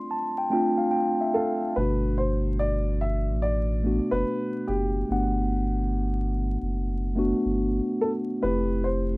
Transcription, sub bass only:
1.77 3.30 G1 loud
3.29 4.00 A1 medium
4.12 4.24 F#1 medium
4.68 5.04 F#1 loud
5.10 6.57 G1 loud
6.62 7.34 F#1 medium
7.45 7.81 G1 medium
8.43 9.17 F1 loud

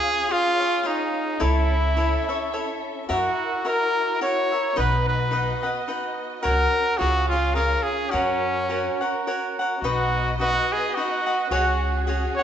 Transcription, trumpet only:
0.00 0.33 G#4 loud
0.32 0.88 F4 loud
0.87 1.45 D#4 medium
1.43 2.85 E4 medium
3.14 3.64 F#4 medium
3.68 4.19 A#4 loud
4.23 4.74 C#5 medium
4.79 5.07 B4 medium
5.08 5.85 B4 medium
6.43 7.00 A#4 loud
6.98 7.28 F#4 loud
7.28 7.56 F4 medium
7.55 7.84 A#4 medium
7.83 8.12 G#4 medium
8.11 9.25 C#4 medium
9.81 10.34 F#4 loud
10.40 10.74 F#4 loud
10.72 10.97 G#4 loud
10.95 11.51 F#4 medium
11.51 12.04 F#4 medium
12.36 12.43 C#5 medium

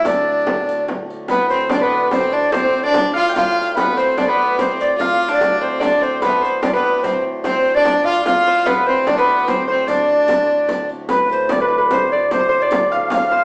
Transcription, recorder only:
0.05 0.84 D5 medium
1.31 1.49 B4 medium
1.50 1.69 C5 medium
1.72 1.85 D5 loud
1.84 2.11 B4 medium
2.12 2.17 D5 medium
2.16 2.35 C5 medium
2.33 2.53 D5 medium
2.52 2.85 C5 medium
2.83 3.14 D5 loud
3.15 3.34 F5 loud
3.36 3.74 F5 medium
3.77 3.96 B4 medium
3.97 4.16 C5 medium
4.20 4.31 D5 medium
4.29 4.59 B4 medium
4.60 4.66 C5 medium
4.81 5.03 D5 medium
5.02 5.31 F5 medium
5.33 5.60 D5 medium
5.62 5.68 C5 medium
5.83 6.05 D5 medium
6.04 6.23 C5 medium
6.24 6.42 B4 medium
6.45 6.63 C5 medium
6.64 6.73 D5 medium
6.74 7.05 B4 medium
7.03 7.24 C5 medium
7.45 7.76 C5 medium
7.75 8.06 D5 loud
8.05 8.24 F5 loud
8.24 8.68 F5 medium
8.66 8.88 B4 medium
8.87 9.09 C5 medium
9.07 9.17 D5 medium
9.17 9.46 B4 medium
9.47 9.66 C5 medium
9.67 9.89 C5 medium
9.88 10.89 D5 medium
11.12 11.29 B4 medium
11.32 11.54 C5 medium
11.53 11.62 D5 loud
11.61 11.90 B4 medium
11.91 12.13 C5 medium
12.12 12.33 D5 medium
12.31 12.63 C5 medium
12.62 12.91 D5 loud
12.92 13.10 F5 loud
13.13 13.44 F5 loud

